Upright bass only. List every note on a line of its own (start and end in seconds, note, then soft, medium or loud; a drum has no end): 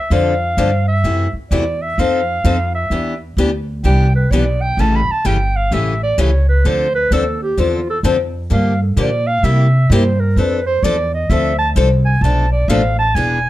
0.10 0.56 F2 medium
0.57 1.03 G2 medium
1.04 1.31 F#2 medium
1.33 muted upright bass stroke soft
1.51 1.96 E2 medium
1.98 2.43 F2 medium
2.44 2.90 F2 medium
2.90 3.36 E2 medium
3.37 3.82 D2 medium
3.84 4.29 C2 medium
4.31 4.76 B1 medium
4.77 5.05 A1 medium
5.08 muted upright bass stroke soft
5.25 5.70 G1 medium
5.71 6.16 A1 medium
6.18 6.63 C#2 medium
6.65 7.10 D2 medium
7.11 7.56 D#2 medium
7.58 8.03 E2 medium
8.03 8.49 F2 medium
8.51 8.96 G2 medium
8.96 9.42 A#2 medium
9.43 9.88 C3 medium
9.90 10.35 G2 loud
10.36 10.82 F2 medium
10.83 11.28 E2 medium
11.30 11.75 D2 loud
11.76 12.20 C2 medium
12.21 12.67 B1 medium
12.68 13.14 A1 loud
13.15 13.50 E1 medium